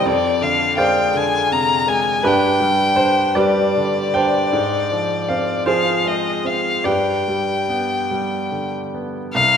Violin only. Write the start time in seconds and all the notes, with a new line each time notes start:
0.06 D5
0.43 F5
0.78 G5
1.16 G#5
1.52 A#5
1.88 G#5
2.27 G5
3.38 D5
5.68 F5
6.07 D#5
6.46 F5
6.85 G5
9.34 F5